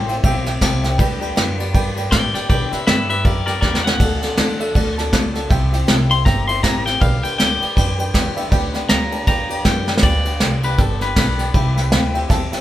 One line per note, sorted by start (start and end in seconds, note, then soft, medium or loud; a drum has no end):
0.00 0.23 A1 medium
0.00 0.43 C5 loud
0.08 0.23 C4 medium
0.08 0.24 E4 medium
0.08 0.23 G4 medium
0.08 0.18 C5 medium
0.08 0.18 E5 medium
0.08 0.18 G5 loud
0.08 ride medium
0.23 0.60 B1 medium
0.23 0.46 G3 medium
0.23 0.47 C4 medium
0.23 0.46 E4 medium
0.23 0.44 G4 medium
0.23 0.37 C5 loud
0.23 0.38 E5 loud
0.23 0.38 G5 loud
0.23 kick loud
0.23 ride medium
0.45 0.61 C4 medium
0.45 0.62 E4 medium
0.45 0.61 G4 medium
0.45 0.55 C5 loud
0.45 0.56 E5 medium
0.45 0.56 G5 loud
0.45 snare soft
0.45 ride medium
0.61 0.98 C2 loud
0.61 0.84 C3 medium
0.61 0.84 G3 medium
0.61 0.84 C4 loud
0.61 0.84 E4 loud
0.61 0.82 G4 loud
0.61 0.75 C5 medium
0.61 0.75 E5 medium
0.61 0.76 F#5 loud
0.61 0.83 A5 medium
0.61 kick medium
0.61 snare loud
0.61 ride medium
0.83 1.00 C4 medium
0.83 1.00 E4 medium
0.83 0.99 G4 medium
0.83 0.93 C5 medium
0.83 0.93 E5 medium
0.83 0.94 G5 loud
0.83 snare soft
0.83 ride medium
0.98 1.36 D2 medium
0.98 1.21 G2 medium
0.98 1.22 D3 medium
0.98 1.22 G3 loud
0.98 1.22 B3 medium
0.98 1.21 D4 medium
0.98 1.20 G4 medium
0.98 1.12 B4 loud
0.98 1.13 D5 loud
0.98 1.13 G5 loud
0.98 kick loud
0.98 ride medium
1.20 1.36 G3 medium
1.20 1.36 B3 medium
1.20 1.36 D4 medium
1.20 1.36 G4 medium
1.20 1.30 B4 medium
1.20 1.30 D5 medium
1.20 1.31 G5 loud
1.20 ride medium
1.36 1.73 F#2 medium
1.36 1.59 G2 medium
1.36 1.59 D3 medium
1.36 1.59 G3 medium
1.36 1.59 B3 loud
1.36 1.58 D4 medium
1.36 1.57 G4 medium
1.36 1.50 B4 medium
1.36 1.50 D5 medium
1.36 1.50 G5 loud
1.36 snare loud
1.36 ride medium
1.58 1.73 G3 medium
1.58 1.74 B3 medium
1.58 1.75 D4 medium
1.58 1.74 G4 medium
1.58 1.68 B4 medium
1.58 1.68 D5 medium
1.58 1.69 F#5 loud
1.58 ride medium
1.73 2.11 G2 medium
1.73 1.97 G3 medium
1.73 1.97 B3 medium
1.73 1.96 D4 medium
1.73 1.87 B4 loud
1.73 1.88 D5 loud
1.73 1.88 G5 loud
1.73 kick loud
1.73 ride medium
1.77 1.95 G4 medium
1.96 2.11 G3 soft
1.96 2.12 B3 medium
1.96 2.12 D4 medium
1.96 2.12 G4 medium
1.96 2.06 B4 medium
1.96 2.06 D5 medium
1.96 2.07 G5 loud
1.96 ride medium
2.11 2.34 G2 medium
2.11 2.33 A2 medium
2.11 2.34 D3 medium
2.11 2.35 G3 medium
2.11 2.35 B3 medium
2.11 2.34 D4 medium
2.11 2.32 G4 medium
2.11 2.25 B4 medium
2.11 2.33 D5 loud
2.11 2.26 D5 medium
2.11 2.26 E5 medium
2.11 2.34 G5 loud
2.11 kick medium
2.11 snare loud
2.11 ride medium
2.33 2.49 G3 soft
2.33 2.50 B3 medium
2.33 2.50 D4 medium
2.33 2.49 G4 medium
2.33 2.43 B4 medium
2.33 2.48 D5 medium
2.33 2.44 D5 medium
2.33 2.49 G5 medium
2.33 2.44 G5 medium
2.33 muted upright bass stroke soft
2.33 snare soft
2.33 ride medium
2.49 2.72 G2 medium
2.49 2.71 B2 medium
2.49 2.72 D3 medium
2.49 2.73 G3 medium
2.49 2.73 B3 medium
2.49 2.71 D4 medium
2.49 2.70 G4 medium
2.49 2.63 B4 loud
2.49 2.72 D5 medium
2.49 2.63 D5 medium
2.49 2.72 G5 loud
2.49 2.64 G5 loud
2.49 kick loud
2.49 ride medium
2.71 2.87 G3 soft
2.71 2.87 B3 medium
2.71 2.88 D4 medium
2.71 2.87 G4 medium
2.71 2.85 B4 medium
2.71 2.81 B4 medium
2.71 2.81 D5 medium
2.71 2.86 E5 medium
2.71 2.82 G5 medium
2.71 muted upright bass stroke soft
2.71 snare soft
2.71 ride medium
2.87 3.10 G2 medium
2.87 3.24 G2 medium
2.87 3.10 D3 medium
2.87 3.10 G3 medium
2.87 3.10 B3 medium
2.87 3.09 D4 medium
2.87 3.08 G4 medium
2.87 3.08 B4 medium
2.87 3.01 B4 medium
2.87 3.01 D5 medium
2.87 3.09 E5 loud
2.87 3.01 G5 medium
2.87 snare loud
2.87 ride medium
3.09 3.23 G3 soft
3.09 3.24 B3 medium
3.09 3.25 D4 medium
3.09 3.25 G4 medium
3.09 3.19 B4 medium
3.09 3.24 B4 medium
3.09 3.19 D5 medium
3.09 3.25 E5 medium
3.09 3.19 G5 medium
3.09 ride medium
3.24 3.62 F#2 medium
3.24 3.47 G3 medium
3.24 3.48 B3 medium
3.24 3.47 D4 medium
3.24 3.46 G4 medium
3.24 3.45 A#4 medium
3.24 3.38 B4 loud
3.24 3.38 D5 medium
3.24 3.45 D5 medium
3.24 3.39 E5 loud
3.24 kick loud
3.24 ride medium
3.46 3.62 G3 soft
3.46 3.62 B3 soft
3.46 3.63 D4 medium
3.46 3.62 G4 medium
3.46 3.60 A#4 medium
3.46 3.56 B4 medium
3.46 3.60 D5 medium
3.46 3.56 D5 medium
3.46 3.57 G5 medium
3.46 snare soft
3.46 ride medium
3.61 3.99 E2 medium
3.61 3.85 G2 medium
3.61 3.85 D3 medium
3.61 3.85 G3 medium
3.61 3.85 B3 medium
3.61 3.84 D4 medium
3.61 3.83 G4 medium
3.61 3.83 A#4 medium
3.61 3.75 B4 medium
3.61 3.84 D5 loud
3.61 3.76 D5 medium
3.61 3.76 G5 medium
3.61 kick medium
3.61 snare medium
3.75 snare medium
3.84 4.00 G3 soft
3.84 4.00 B3 soft
3.84 3.99 D4 medium
3.84 4.00 G4 medium
3.84 3.94 B4 medium
3.84 3.94 D5 medium
3.84 4.94 F#5 loud
3.84 3.94 G5 medium
3.84 snare loud
3.99 4.37 D2 medium
3.99 4.22 D3 medium
3.99 4.23 A3 medium
3.99 4.23 D4 medium
3.99 4.23 F#4 medium
3.99 4.13 A4 loud
3.99 4.21 A4 medium
3.99 4.13 D5 medium
3.99 4.14 F#5 loud
3.99 kick loud
3.99 crash medium
3.99 ride medium
4.21 4.38 F#4 medium
4.21 4.31 A4 medium
4.21 4.38 A4 medium
4.21 4.31 D5 medium
4.21 4.32 F#5 medium
4.21 snare soft
4.21 ride medium
4.25 4.37 D4 soft
4.36 4.74 E2 medium
4.36 4.60 D3 medium
4.36 4.60 A3 medium
4.36 4.61 D4 medium
4.36 4.60 F#4 medium
4.36 4.50 A4 medium
4.36 4.58 A4 loud
4.36 4.51 D5 medium
4.36 4.51 F#5 loud
4.36 snare loud
4.36 ride medium
4.59 4.75 D4 soft
4.59 4.76 F#4 medium
4.59 4.69 A4 medium
4.59 4.75 A4 medium
4.59 4.69 D5 medium
4.59 4.69 E5 loud
4.59 ride medium
4.74 5.12 D2 medium
4.74 4.98 A3 medium
4.74 4.98 D4 medium
4.74 4.98 F#4 medium
4.74 4.88 A4 loud
4.74 4.96 A4 medium
4.74 4.89 D5 loud
4.74 4.89 F#5 loud
4.74 kick loud
4.74 ride medium
4.96 5.13 F#4 medium
4.96 5.06 A4 medium
4.96 5.13 A4 medium
4.96 5.07 D5 medium
4.96 5.07 A5 loud
4.96 snare soft
4.96 ride medium
5.00 5.13 D4 soft
5.12 5.50 C#2 medium
5.12 5.35 D3 medium
5.12 5.36 A3 loud
5.12 5.36 D4 loud
5.12 5.35 F#4 loud
5.12 5.26 A4 medium
5.12 5.34 A4 loud
5.12 5.26 D5 medium
5.12 5.27 F#5 loud
5.12 kick medium
5.12 snare loud
5.12 ride medium
5.34 5.51 F#4 medium
5.34 5.44 A4 medium
5.34 5.50 A4 medium
5.34 5.44 D5 medium
5.34 5.45 F#5 loud
5.34 snare soft
5.34 ride medium
5.38 5.51 D4 medium
5.49 5.87 C2 medium
5.49 5.73 C3 medium
5.49 5.73 G3 loud
5.49 5.73 C4 loud
5.49 5.73 E4 medium
5.49 5.71 G4 medium
5.49 5.63 C5 loud
5.49 5.64 E5 loud
5.49 5.64 G5 loud
5.49 kick loud
5.49 ride medium
5.72 5.88 C4 soft
5.72 5.88 E4 medium
5.72 5.88 G4 medium
5.72 5.82 C5 medium
5.72 5.82 E5 medium
5.72 5.82 G5 loud
5.72 snare soft
5.72 ride medium
5.87 6.25 C2 medium
5.87 6.10 C3 medium
5.87 6.11 G3 medium
5.87 6.11 C4 medium
5.87 6.11 E4 medium
5.87 6.09 G4 medium
5.87 6.01 C5 medium
5.87 6.01 E5 medium
5.87 6.02 G5 loud
5.87 snare loud
5.87 ride medium
6.10 6.26 E4 medium
6.10 6.26 G4 medium
6.10 6.19 C5 medium
6.10 6.20 E5 medium
6.10 6.20 G5 medium
6.10 6.25 C6 loud
6.10 ride medium
6.14 6.25 C4 soft
6.25 6.63 G1 medium
6.25 6.48 G3 medium
6.25 6.49 C4 medium
6.25 6.48 E4 medium
6.25 6.46 G4 medium
6.25 6.39 C5 loud
6.25 6.39 E5 loud
6.25 6.40 G5 loud
6.25 6.47 A#5 loud
6.25 kick loud
6.25 snare soft
6.25 ride medium
6.47 6.63 C4 soft
6.47 6.64 E4 soft
6.47 6.63 G4 medium
6.47 6.57 C5 medium
6.47 6.57 E5 medium
6.47 6.58 G5 medium
6.47 6.63 C6 loud
6.47 ride medium
6.63 7.00 A1 medium
6.63 6.86 C3 medium
6.63 6.86 G3 medium
6.63 6.87 C4 medium
6.63 6.85 E4 medium
6.63 6.84 G4 medium
6.63 6.77 C5 medium
6.63 6.77 E5 medium
6.63 6.78 G5 medium
6.63 6.85 A#5 loud
6.63 kick medium
6.63 snare loud
6.63 ride medium
6.85 7.01 C4 medium
6.85 7.02 E4 medium
6.85 7.01 G4 medium
6.85 6.95 C5 medium
6.85 6.95 E5 medium
6.85 7.01 G5 loud
6.85 6.96 G5 medium
6.85 snare soft
6.85 ride medium
7.00 7.22 B1 medium
7.00 7.23 G2 medium
7.00 7.24 D3 medium
7.00 7.24 G3 medium
7.00 7.24 B3 medium
7.00 7.23 D4 medium
7.00 7.22 G4 medium
7.00 7.14 B4 loud
7.00 7.15 D5 medium
7.00 7.23 F5 loud
7.00 7.15 G5 loud
7.00 kick loud
7.00 ride medium
7.23 7.38 G3 medium
7.23 7.39 B3 medium
7.23 7.39 D4 soft
7.23 7.39 G4 medium
7.23 7.32 B4 medium
7.23 7.33 D5 medium
7.23 7.37 G5 loud
7.23 7.33 G5 medium
7.23 muted upright bass stroke soft
7.23 ride medium
7.38 7.60 D2 medium
7.38 7.61 G2 medium
7.38 7.62 D3 medium
7.38 7.62 G3 medium
7.38 7.62 B3 medium
7.38 7.61 D4 medium
7.38 7.60 G4 medium
7.38 7.52 B4 medium
7.38 7.52 D5 medium
7.38 8.48 G5 loud
7.38 7.53 G5 medium
7.38 snare loud
7.38 ride medium
7.60 7.76 B3 medium
7.60 7.77 D4 medium
7.60 7.77 G4 medium
7.60 7.70 B4 medium
7.60 7.71 D5 medium
7.60 7.71 G5 medium
7.60 muted upright bass stroke soft
7.60 ride medium
7.64 7.75 G3 soft
7.76 8.13 F#2 medium
7.76 7.99 G3 medium
7.76 8.00 B3 medium
7.76 7.99 D4 medium
7.76 7.97 G4 medium
7.76 7.90 B4 loud
7.76 7.90 D5 medium
7.76 7.90 G5 loud
7.76 kick loud
7.76 snare soft
7.76 ride medium
7.98 8.14 G3 medium
7.98 8.14 B3 medium
7.98 8.15 D4 medium
7.98 8.14 G4 medium
7.98 8.08 B4 medium
7.98 8.08 D5 medium
7.98 8.09 G5 loud
7.98 ride medium
8.13 8.51 E2 loud
8.13 8.37 G2 loud
8.13 8.37 D3 loud
8.13 8.37 G3 loud
8.13 8.38 B3 medium
8.13 8.37 D4 medium
8.13 8.35 G4 loud
8.13 8.27 B4 medium
8.13 8.28 D5 medium
8.13 8.28 G5 loud
8.13 kick medium
8.13 snare loud
8.13 ride medium
8.35 8.52 B3 medium
8.35 8.52 D4 medium
8.35 8.52 G4 medium
8.35 8.45 B4 medium
8.35 8.46 D5 medium
8.35 8.46 E5 loud
8.35 ride medium
8.40 8.51 G3 medium
8.50 8.89 D2 medium
8.50 8.74 G2 medium
8.50 8.75 D3 loud
8.50 8.75 G3 medium
8.50 8.75 B3 loud
8.50 8.74 D4 loud
8.50 8.72 G4 medium
8.50 8.65 B4 loud
8.50 8.65 D5 loud
8.50 8.66 G5 loud
8.50 kick loud
8.50 ride medium
8.73 8.89 G3 medium
8.73 8.90 B3 medium
8.73 8.90 D4 medium
8.73 8.89 G4 medium
8.73 8.83 B4 loud
8.73 8.84 D5 medium
8.73 8.84 F#5 loud
8.73 snare soft
8.73 ride medium
8.89 9.26 D2 medium
8.89 9.12 G2 medium
8.89 9.13 D3 medium
8.89 9.13 G3 medium
8.89 9.13 B3 medium
8.89 9.11 D4 medium
8.89 9.10 G4 medium
8.89 9.03 B4 medium
8.89 9.03 D5 medium
8.89 9.04 G5 medium
8.89 9.26 A#5 loud
8.89 snare loud
8.89 ride medium
9.11 9.25 G3 soft
9.11 9.27 B3 soft
9.11 9.28 D4 medium
9.11 9.27 G4 medium
9.11 9.21 B4 medium
9.11 9.21 D5 medium
9.11 9.21 A5 medium
9.11 ride medium
9.26 9.64 E2 medium
9.26 9.50 G3 medium
9.26 9.50 B3 medium
9.26 9.49 D4 medium
9.26 9.48 G4 medium
9.26 9.41 B4 loud
9.26 9.41 D5 medium
9.26 9.41 G5 loud
9.26 9.64 A#5 loud
9.26 kick loud
9.26 snare soft
9.26 ride medium
9.49 9.64 G3 soft
9.49 9.65 B3 soft
9.49 9.65 D4 medium
9.49 9.65 G4 medium
9.49 9.59 B4 medium
9.49 9.59 D5 medium
9.49 9.60 G5 medium
9.49 ride medium
9.64 10.02 F#2 medium
9.64 9.88 G2 medium
9.64 9.88 D3 medium
9.64 9.88 G3 medium
9.64 9.88 B3 medium
9.64 9.87 D4 medium
9.64 9.85 G4 medium
9.64 9.78 B4 medium
9.64 9.79 D5 medium
9.64 9.79 G5 medium
9.64 10.02 G5 loud
9.64 kick medium
9.64 snare loud
9.64 ride medium
9.86 10.02 G3 soft
9.86 10.03 B3 medium
9.86 10.03 D4 medium
9.86 10.02 G4 medium
9.86 9.96 B4 medium
9.86 9.97 D5 medium
9.86 9.97 G5 medium
9.86 snare medium
9.98 snare loud
10.02 10.40 D2 medium
10.02 10.25 G2 medium
10.02 10.26 D3 medium
10.02 10.26 G3 medium
10.02 10.26 B3 medium
10.02 10.25 D4 medium
10.02 10.24 G4 medium
10.02 10.16 B4 loud
10.02 10.16 D5 medium
10.02 10.62 D5 loud
10.02 10.17 G5 loud
10.02 kick loud
10.02 crash loud
10.24 10.40 G3 soft
10.24 10.41 B3 soft
10.24 10.41 D4 soft
10.24 10.40 G4 medium
10.24 10.34 B4 medium
10.24 10.35 D5 medium
10.24 10.35 F#5 medium
10.24 ride medium
10.40 10.78 C2 medium
10.40 10.63 G2 medium
10.40 10.64 D3 medium
10.40 10.64 G3 medium
10.40 10.64 B3 medium
10.40 10.63 D4 medium
10.40 10.62 G4 medium
10.40 10.54 B4 medium
10.40 10.54 D5 medium
10.40 10.55 G5 medium
10.40 snare loud
10.40 ride medium
10.63 10.77 G3 soft
10.63 10.78 B3 medium
10.63 10.79 D4 soft
10.63 10.78 G4 medium
10.63 10.72 B4 medium
10.63 10.80 B4 medium
10.63 10.73 D5 medium
10.63 10.73 G5 medium
10.63 ride medium
10.77 11.15 G1 medium
10.77 11.01 G3 medium
10.77 11.02 B3 medium
10.77 11.01 D4 medium
10.77 11.01 A4 medium
10.77 10.92 B4 loud
10.77 10.92 D5 medium
10.77 10.92 G5 loud
10.77 kick loud
10.77 snare soft
10.77 ride medium
10.82 10.99 G4 medium
11.00 11.17 B3 soft
11.00 11.17 D4 soft
11.00 11.16 G4 medium
11.00 11.10 B4 medium
11.00 11.17 B4 medium
11.00 11.10 D5 medium
11.00 11.11 G5 medium
11.00 snare soft
11.00 ride medium
11.04 11.17 G3 soft
11.16 11.53 B1 medium
11.16 11.39 G2 medium
11.16 11.39 D3 medium
11.16 11.40 G3 medium
11.16 11.40 B3 medium
11.16 11.39 D4 medium
11.16 11.38 G4 medium
11.16 11.30 B4 medium
11.16 12.27 B4 medium
11.16 11.30 D5 medium
11.16 11.30 G5 medium
11.16 kick medium
11.16 snare loud
11.16 ride medium
11.38 11.54 G3 soft
11.38 11.55 B3 medium
11.38 11.55 D4 medium
11.38 11.54 G4 medium
11.38 11.48 B4 medium
11.38 11.48 D5 medium
11.38 11.49 G5 medium
11.38 snare soft
11.38 ride medium
11.53 11.91 C2 medium
11.53 11.77 C3 medium
11.53 11.77 G3 medium
11.53 11.77 C4 medium
11.53 11.77 E4 medium
11.53 11.75 G4 medium
11.53 11.67 C5 loud
11.53 11.68 E5 medium
11.53 11.68 G5 loud
11.53 kick loud
11.53 ride medium
11.76 11.93 E4 medium
11.76 11.92 G4 medium
11.76 11.86 C5 medium
11.76 11.86 E5 medium
11.76 11.86 G5 loud
11.76 snare soft
11.76 ride medium
11.80 11.93 C4 soft
11.91 12.29 D2 medium
11.91 12.15 C3 medium
11.91 12.15 G3 medium
11.91 12.15 C4 loud
11.91 12.14 E4 medium
11.91 12.13 G4 loud
11.91 12.05 C5 medium
11.91 12.05 E5 medium
11.91 12.06 G5 medium
11.91 snare loud
11.91 ride medium
12.14 12.29 C4 soft
12.14 12.30 E4 medium
12.14 12.29 G4 medium
12.14 12.23 C5 medium
12.14 12.24 E5 medium
12.14 12.24 G5 loud
12.14 ride medium
12.28 12.51 E2 medium
12.28 12.52 G3 medium
12.28 12.53 C4 medium
12.28 12.52 E4 medium
12.28 12.43 C5 loud
12.28 12.43 E5 loud
12.28 12.44 A5 loud
12.28 kick loud
12.28 snare soft
12.28 ride medium
12.32 12.51 G4 medium
12.52 12.61 C4 medium
12.52 12.61 E4 medium
12.52 12.61 G4 medium
12.52 12.61 C5 medium
12.52 12.61 E5 medium
12.52 12.61 G5 loud
12.52 muted upright bass stroke soft
12.52 snare soft
12.52 ride medium